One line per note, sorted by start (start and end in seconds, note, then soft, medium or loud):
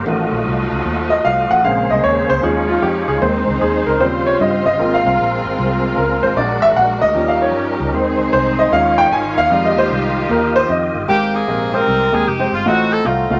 0.05 0.28 A1 loud
0.05 0.35 D#3 soft
0.05 1.63 F3 medium
0.05 0.36 F#3 soft
0.05 1.63 F#3 medium
0.05 1.63 A3 medium
0.05 0.36 A3 medium
0.05 1.63 A3 medium
0.05 1.63 D#4 medium
0.05 1.63 F4 medium
0.05 1.63 F#4 medium
0.05 1.63 D#5 medium
0.31 0.43 A#1 medium
0.46 0.67 C2 medium
0.71 0.83 C#2 medium
0.85 1.18 D#2 medium
1.10 1.23 D#5 loud
1.25 1.46 C2 medium
1.25 1.51 F5 loud
1.50 1.62 A1 medium
1.50 1.65 F#5 loud
1.63 1.86 A#1 loud
1.63 3.20 C#3 medium
1.63 2.39 C#3 medium
1.63 2.42 C#3 medium
1.63 2.42 G#3 medium
1.63 2.40 G#3 soft
1.63 2.42 A#3 medium
1.63 2.43 A#3 medium
1.63 2.42 C4 medium
1.63 2.40 C4 medium
1.63 2.42 G#4 medium
1.63 2.42 C5 medium
1.63 1.89 F5 medium
1.89 2.01 C2 medium
1.89 2.04 D#5 loud
2.04 2.25 D#2 medium
2.04 2.30 C#5 medium
2.29 2.41 C#2 medium
2.29 2.44 C5 medium
2.43 2.76 D#2 loud
2.43 2.72 F3 medium
2.43 3.21 F3 medium
2.43 3.99 G#3 medium
2.43 2.73 G#3 soft
2.43 3.99 G#3 medium
2.43 2.73 C#4 medium
2.43 3.99 D#4 medium
2.43 3.21 D#4 medium
2.43 3.21 F4 medium
2.43 2.67 G#4 medium
2.43 3.21 C#5 medium
2.68 2.83 F4 medium
2.82 3.04 F2 medium
2.82 3.06 G4 medium
3.08 3.20 C#2 medium
3.08 3.22 G#4 medium
3.21 3.43 D#2 loud
3.21 3.51 D#3 medium
3.21 4.01 D#3 medium
3.21 3.51 G#3 soft
3.21 4.00 C4 medium
3.21 3.52 C4 medium
3.21 4.00 D#4 medium
3.21 3.46 C5 medium
3.21 4.78 C5 medium
3.21 4.79 C5 medium
3.47 3.59 C#2 medium
3.61 3.83 D#2 medium
3.61 3.88 G#4 medium
3.86 4.01 C#2 medium
3.86 4.01 A#4 medium
3.99 4.34 D#2 loud
3.99 4.75 C#3 medium
3.99 4.79 C#3 medium
3.99 4.75 F3 soft
3.99 4.75 G3 soft
3.99 4.79 G3 medium
3.99 4.76 C4 medium
3.99 6.34 F4 medium
3.99 6.35 F4 medium
3.99 4.06 C5 medium
4.26 4.39 C#5 medium
4.40 4.62 G2 medium
4.40 4.64 D#5 medium
4.65 4.77 G1 medium
4.65 4.94 D#5 loud
4.79 5.01 G#1 loud
4.79 6.33 F3 medium
4.79 7.13 G#3 medium
4.79 6.35 G#3 medium
4.79 7.91 A#3 medium
4.79 6.33 A#3 soft
4.79 6.35 C4 medium
4.79 6.33 C4 medium
4.79 7.91 A#4 medium
4.94 5.05 F5 medium
5.05 5.17 C2 medium
5.05 5.26 F5 medium
5.19 5.40 A#1 medium
5.44 5.56 G#1 medium
5.58 5.92 C2 medium
5.97 6.19 C#2 medium
5.97 6.21 A#4 medium
6.23 6.35 G#1 medium
6.23 6.37 C5 medium
6.36 6.58 A#1 loud
6.36 6.98 F#3 medium
6.36 6.99 G#3 soft
6.36 7.15 G#3 medium
6.36 7.15 D4 medium
6.36 6.99 D4 medium
6.36 7.15 F#4 medium
6.36 6.63 D5 medium
6.62 6.74 G#1 medium
6.62 6.67 E5 loud
6.76 6.98 A#1 medium
6.76 6.82 F#5 loud
7.01 7.13 D2 medium
7.01 7.29 D#5 loud
7.15 7.54 D#2 medium
7.15 7.90 F3 medium
7.15 7.90 G3 soft
7.15 7.93 G3 medium
7.15 7.93 C#4 medium
7.15 7.90 C#4 medium
7.15 7.94 C#4 medium
7.15 7.92 D#4 medium
7.15 8.71 D#4 medium
7.15 7.93 G4 medium
7.28 7.42 F5 medium
7.42 7.62 C#5 medium
7.54 7.76 G2 medium
7.80 7.93 C#2 medium
7.93 8.19 D#2 loud
7.93 8.68 D#3 medium
7.93 11.05 D#3 medium
7.93 9.49 G#3 medium
7.93 8.69 G#3 soft
7.93 8.72 C4 medium
7.93 8.69 C4 medium
7.93 9.49 D#4 medium
7.93 8.72 G#4 medium
7.93 8.72 C5 medium
8.19 8.31 C#2 medium
8.33 8.66 C2 medium
8.33 8.59 C5 medium
8.59 8.73 D#5 loud
8.71 9.06 D#2 loud
8.71 9.01 F3 medium
8.71 9.02 G#3 medium
8.71 9.50 C#4 medium
8.71 9.02 C#4 medium
8.71 9.51 D#4 medium
8.71 11.06 F4 medium
8.71 9.50 F4 medium
8.71 9.51 C#5 medium
8.71 8.99 F5 loud
8.98 9.12 G5 loud
9.11 9.33 G#1 medium
9.11 9.38 G#5 loud
9.37 9.49 D#2 medium
9.37 9.65 F5 loud
9.50 9.76 F2 loud
9.50 11.07 F3 medium
9.50 10.12 G3 medium
9.50 10.13 G#3 soft
9.50 11.07 D#4 medium
9.50 10.13 D#4 medium
9.50 11.07 F4 medium
9.50 11.07 G4 medium
9.50 11.07 D#5 medium
9.65 9.78 D#5 medium
9.76 9.88 D#2 medium
9.76 9.98 C5 medium
9.90 10.24 C2 medium
10.29 10.63 D#2 loud
10.29 10.57 A#4 medium
10.56 10.70 C5 loud
10.69 10.91 F2 medium
10.69 11.06 D#5 medium
10.95 11.06 G1 medium
11.08 11.42 G#1 loud
11.08 11.69 G#2 medium
11.08 11.39 G#3 medium
11.08 11.83 A#3 medium
11.08 11.39 C4 medium
11.08 11.33 C4 medium
11.08 11.32 G4 medium
11.08 11.39 G4 medium
11.08 11.40 A#4 medium
11.34 12.09 C4 medium
11.34 11.73 D#4 medium
11.34 11.73 G#4 medium
11.47 11.81 A#1 medium
11.47 11.65 G#3 medium
11.47 11.65 C4 medium
11.47 11.66 G4 medium
11.47 11.66 A#4 medium
11.73 11.97 G#3 medium
11.73 11.97 C4 medium
11.73 12.48 D#4 medium
11.73 11.97 G4 medium
11.73 12.26 G4 medium
11.73 12.13 A#4 loud
11.73 11.97 C5 medium
11.87 12.09 C2 medium
12.12 12.25 D#2 medium
12.12 12.27 G#3 medium
12.12 12.28 C4 medium
12.12 12.28 G4 medium
12.12 12.27 G#4 medium
12.12 12.28 A#4 medium
12.27 12.48 F1 medium
12.27 12.52 G4 medium
12.39 12.59 G#3 medium
12.39 12.60 C4 medium
12.39 12.60 G4 medium
12.39 12.60 C5 medium
12.52 12.64 G1 medium
12.52 12.66 F4 medium
12.66 12.99 A1 medium
12.66 13.27 A2 medium
12.66 12.97 A3 medium
12.66 13.04 C4 medium
12.66 13.40 D#4 medium
12.66 12.97 F4 medium
12.66 12.92 F#4 medium
12.66 12.97 F#4 medium
12.66 12.97 D#5 medium
12.92 13.06 A4 medium
13.05 13.27 C2 medium
13.05 13.23 A3 medium
13.05 13.40 C4 soft
13.05 13.23 F4 medium
13.05 13.40 F4 medium
13.05 13.23 F#4 medium
13.05 13.23 F5 medium
13.30 13.40 C#2 medium
13.30 13.40 A3 medium
13.30 13.40 F4 medium
13.30 13.40 F#4 medium
13.30 13.40 F5 medium